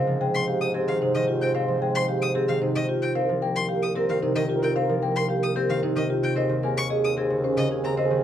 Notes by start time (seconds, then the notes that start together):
Already playing: G#2 C4 C5 F5
0.07 F3
0.21 G#3 G#4 C5 G5
0.34 C6
0.48 G4 C5 F5
0.61 D#6
0.74 C4 G4 G#4
0.79 C5
0.88 D#3 F5
1.01 C3 D#4 C5
1.06 C5
1.15 D#3 D#5
1.27 F4 G4
1.34 C5
1.41 C4 G5
1.55 C4 C5 F5
1.63 C5
1.68 F3
1.82 G#3 G#4 G5
1.91 C5
1.95 C6
2.08 G4 F5
2.19 C5 D#6
2.35 C4 G4 G#4
2.47 D#3 C5 F5
2.62 C3 D#4 C5
2.75 D#3 C5 D#5
2.89 F4 G4
3.02 C4 G5
3.15 C2 C4 A#4 C5 F5
3.29 F3
3.42 A#3 A#4 G5
3.56 C6
3.69 G4 A#4 F5
3.82 D#6
3.95 C4 G4 A#4
4.09 D#3 F5
4.23 C3 D#4 C5
4.27 A#4
4.35 D#3 D#5
4.49 F4 G4
4.55 A#4
4.62 C4 G5
4.76 C4 C5 F5
4.83 A#4
4.89 F3
5.02 A#3 A#4 G5
5.12 A#4
5.16 C6
5.29 G4 F5
5.39 A#4 D#6
5.56 C4 G4 A#4
5.67 D#3 A#4 F5
5.82 C3 D#4 C5
5.95 D#3 A#4 D#5
6.10 F4 G4
6.22 C4 G5
6.35 D#2 C4 G#4 C5 D#5
6.49 D#3
6.63 A#3 G#4 A#4 G#5
6.77 C#6
6.90 G#4 D#5
7.04 D#6
7.17 C4 G#4
7.21 G#4
7.30 C#3
7.44 C#4 C5
7.49 G#4
7.57 C#3 D#5
7.71 D#4 G#4
7.77 G#4
7.84 C4 A#5
7.97 C4 C5 D#5
8.05 G#4
8.10 D#3